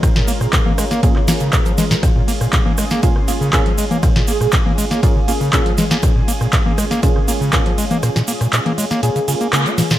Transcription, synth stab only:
X:1
M:4/4
L:1/8
Q:1/4=120
K:Bbm
V:1 name="Synth stab"
z4 [B,DFA] [B,DFA] z2 | z4 [B,DFA] [B,DFA] [B,DFA] z | z4 [B,DFA] [B,DFA] [B,DFA] z | z4 [B,DFA] [B,DFA] [B,DFA] z |
z4 [B,DFA] [B,DFA] [B,DFA] z |]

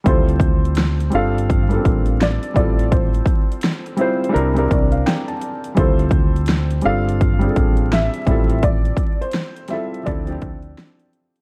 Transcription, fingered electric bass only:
X:1
M:4/4
L:1/16
Q:"Swing 16ths" 1/4=84
K:Dm
V:1 name="Fingered electric bass" clef=bass
D,,6 G,,,4 A,,,3 z A,,,2- | A,,,2 z6 C,,2 C,,2 z4 | D,,6 G,,,4 A,,,3 z A,,,2- | A,,,2 z6 D,,2 D,,2 z4 |]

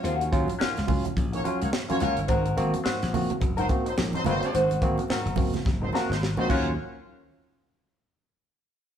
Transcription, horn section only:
X:1
M:4/4
L:1/16
Q:"Swing 16ths" 1/4=107
K:Abmix
V:1 name="Horn section"
z8 z [B,DGd] z [B,DGd] z [B,DGd] [B,DGd]2 | z8 z [G,CEc] z [G,CEc] z [G,CEc] [G,CEc]2 | z8 z [G,CEc] z [G,CEc] z [G,CEc] [B,DGd]2 | z16 |]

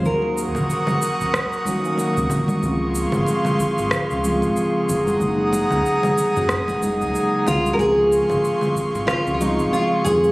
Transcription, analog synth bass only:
X:1
M:4/4
L:1/16
Q:"Swing 16ths" 1/4=93
K:Db
V:1 name="Analog synth bass" clef=bass
E,,3 B,,, z3 E,,, z4 z D,, B,,, z | D,,3 A,,, z3 A,,, z D,,2 A,,, z2 G,,, z | G,,,3 D,, z3 G,, z G,,,2 D,, z2 D,, z | D,,3 A,,, z3 A,,, z D,,2 A,,, z2 F,, z |]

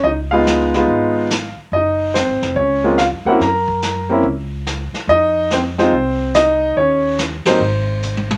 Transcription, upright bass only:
X:1
M:4/4
L:1/8
Q:"Swing" 1/4=143
K:Gblyd
V:1 name="Upright bass" clef=bass
D,,4 A,,,3 z | G,,,2- (3G,,, A,,, F,,, D,,2- (3D,, G,, F,, | G,,4 D,,3 z | F,,4 C,,4 |
E,,3 =A,,, _A,,,4 |]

